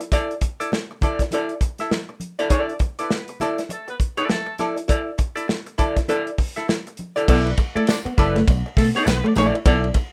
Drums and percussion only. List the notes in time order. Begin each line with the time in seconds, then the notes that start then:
0.01 closed hi-hat
0.12 kick, closed hi-hat, muted conga
0.31 closed hi-hat
0.41 kick, closed hi-hat, muted conga
0.61 closed hi-hat
0.72 snare, high conga
1.01 kick, closed hi-hat, muted conga, low conga
1.19 kick, snare, closed hi-hat
1.31 closed hi-hat, muted conga
1.49 closed hi-hat
1.61 kick, closed hi-hat
1.78 snare, closed hi-hat
1.91 snare, high conga
2.20 closed hi-hat, high conga
2.39 closed hi-hat
2.50 kick, closed hi-hat, muted conga
2.69 closed hi-hat
2.79 kick, closed hi-hat, muted conga
2.99 closed hi-hat
3.10 snare, high conga
3.28 closed hi-hat
3.40 snare, closed hi-hat, muted conga, low conga
3.58 snare, closed hi-hat
3.69 closed hi-hat, muted conga
3.88 closed hi-hat
4.00 kick, closed hi-hat
4.17 closed hi-hat
4.30 snare, high conga
4.58 snare, closed hi-hat, high conga
4.77 closed hi-hat
4.89 kick, closed hi-hat, muted conga
5.18 kick, closed hi-hat
5.37 closed hi-hat
5.49 snare, high conga
5.66 closed hi-hat
5.79 kick, closed hi-hat, muted conga, low conga
5.97 kick, snare, closed hi-hat
6.08 closed hi-hat, muted conga
6.27 closed hi-hat
6.38 kick, open hi-hat
6.57 snare, closed hi-hat
6.69 snare, high conga
6.87 closed hi-hat
6.97 closed hi-hat, high conga
7.17 closed hi-hat
7.28 kick, crash, muted conga
7.47 ride bell
7.57 kick, ride bell, tambourine, muted conga
7.77 ride bell
7.87 snare, ride bell, tambourine, high conga
8.06 ride bell
8.18 kick, snare, ride bell, tambourine, muted conga, low conga
8.36 snare, ride bell
8.48 kick, ride bell, tambourine, muted conga
8.77 kick, snare, open hi-hat, ride bell, low conga
8.95 ride bell
9.06 snare, hi-hat pedal, ride bell, tambourine, high conga
9.24 ride bell, high conga
9.35 snare, ride bell, tambourine, high conga
9.55 ride bell
9.65 kick, ride bell, tambourine, muted conga
9.84 ride bell
9.94 kick, ride bell, tambourine